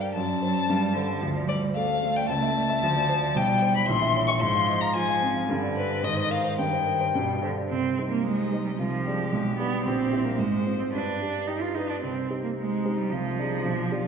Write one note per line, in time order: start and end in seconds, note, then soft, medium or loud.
0.00 0.11 G2 medium
0.00 0.16 G3 medium
0.00 0.17 D4 soft
0.00 0.17 A#4 medium
0.00 0.17 C5 soft
0.00 0.02 D5 medium
0.00 0.15 D5 soft
0.00 0.14 G5 medium
0.14 0.68 F#2 medium
0.14 0.41 F#3 medium
0.14 1.20 A5 medium
0.28 0.50 D5 soft
0.42 0.68 F#3 medium
0.42 0.56 C5 soft
0.56 0.69 D5 medium
0.68 1.21 G2 medium
0.68 0.95 G3 medium
0.83 1.04 D5 soft
0.94 1.23 D3 medium
0.94 1.09 C5 soft
1.09 1.22 D5 medium
1.22 2.26 D2 medium
1.22 1.48 F3 medium
1.36 1.57 D5 medium
1.47 1.75 G3 medium
1.47 1.63 C5 soft
1.47 1.56 D5 medium
1.64 1.85 D5 medium
1.75 2.84 A3 medium
1.75 1.97 A4 medium
1.75 2.18 F5 loud
1.90 2.11 D5 soft
2.03 2.24 A3 medium
2.16 2.30 D5 medium
2.16 2.28 G5 medium
2.29 2.81 C#2 medium
2.29 3.38 A5 loud
2.42 2.64 E5 medium
2.56 2.69 D5 medium
2.69 2.83 E5 medium
2.82 3.34 D2 medium
2.82 3.36 F3 medium
2.96 3.17 D5 medium
3.09 3.23 C5 medium
3.21 3.35 D5 medium
3.34 3.87 B1 medium
3.34 3.86 G3 medium
3.34 3.76 G5 loud
3.49 3.70 D5 medium
3.62 3.76 C5 medium
3.76 3.89 D5 medium
3.76 3.87 B5 loud
3.87 4.40 A#1 medium
3.87 4.42 E3 medium
3.87 4.27 C6 loud
4.02 4.23 E5 medium
4.15 4.28 C#5 medium
4.28 4.42 E5 medium
4.28 4.33 C#6 medium
4.40 5.46 G#2 medium
4.40 4.94 F3 medium
4.40 4.82 C6 loud
4.55 4.77 F5 medium
4.69 4.82 D#5 medium
4.81 5.03 F5 medium
4.81 4.95 A#5 medium
4.95 5.48 F3 medium
4.95 5.17 F4 medium
4.95 5.48 G#5 loud
5.09 5.31 F5 medium
5.22 5.44 C4 medium
5.36 5.50 F5 medium
5.49 6.03 G2 medium
5.49 6.05 D3 medium
5.63 5.85 D5 medium
5.76 6.06 B4 medium
5.76 5.90 C5 soft
6.03 6.57 G#2 medium
6.03 6.58 D#3 medium
6.03 6.32 D#5 loud
6.17 6.39 C5 soft
6.31 6.45 A#4 soft
6.31 6.59 F5 medium
6.44 6.59 C5 soft
6.59 7.13 G2 medium
6.59 7.13 D#3 medium
6.59 7.41 G5 medium
6.73 6.95 C5 soft
6.87 7.01 A#4 soft
7.01 7.15 C5 soft
7.15 7.69 G2 medium
7.15 7.40 B2 medium
7.29 7.51 D5 soft
7.42 7.50 D3 medium
7.42 7.57 C5 soft
7.58 7.71 D5 soft
7.68 7.97 C2 soft
7.68 8.07 C4 medium
7.98 8.48 G3 soft
7.98 8.48 D#4 soft
7.98 8.48 C5 soft
8.11 8.25 A#3 medium
8.24 8.64 G#3 medium
8.24 8.80 D#4 medium
8.52 8.76 G3 soft
8.52 8.76 D#4 soft
8.52 8.77 C5 soft
8.64 8.70 G3 medium
8.78 9.05 C2 medium
8.78 9.34 F3 medium
8.78 9.05 F4 medium
9.05 9.30 G#3 soft
9.05 9.30 D4 soft
9.05 9.84 G4 medium
9.05 9.31 D5 soft
9.32 9.58 B1 medium
9.32 9.57 G#3 medium
9.58 9.83 G3 soft
9.58 9.83 B3 medium
9.58 9.83 D4 soft
9.58 9.83 D5 soft
9.84 10.11 A#1 medium
9.84 10.26 C4 medium
9.84 10.41 G4 medium
10.13 10.36 G3 soft
10.13 10.37 E4 soft
10.13 10.37 C5 soft
10.25 10.39 A#3 medium
10.38 10.65 G#2 medium
10.38 10.78 G#3 medium
10.38 10.92 C5 medium
10.66 10.90 C4 soft
10.66 10.91 F4 soft
10.66 10.91 C5 soft
10.79 10.84 C4 medium
10.92 11.20 G2 soft
10.92 11.49 D4 medium
10.92 11.41 B4 soft
11.21 11.71 D4 soft
11.21 11.72 G4 soft
11.21 11.72 B4 soft
11.47 11.63 D#4 medium
11.47 11.56 G4 soft
11.61 11.76 F4 medium
11.74 12.00 D4 soft
11.74 11.91 D#4 medium
11.74 12.00 G4 soft
11.74 12.02 B4 soft
11.74 12.00 B4 soft
11.90 12.02 D4 medium
12.02 12.29 C2 soft
12.02 12.42 C4 medium
12.30 12.80 D#4 soft
12.30 12.80 G4 soft
12.30 12.80 C5 soft
12.44 12.49 A#3 soft
12.57 12.99 G#3 medium
12.57 13.13 D#4 medium
12.85 13.08 D#4 soft
12.85 13.09 G4 soft
12.85 13.09 C5 soft
12.97 13.12 G3 medium
13.10 13.37 C2 medium
13.10 14.07 F3 medium
13.10 13.41 F4 medium
13.39 13.62 D4 soft
13.39 13.67 D#4 medium
13.39 13.62 G#4 soft
13.39 13.63 D5 soft
13.65 13.90 B1 medium
13.65 13.92 D4 medium
13.91 14.07 D4 soft
13.91 14.07 F4 medium
13.91 14.07 G4 soft
13.91 14.07 D5 soft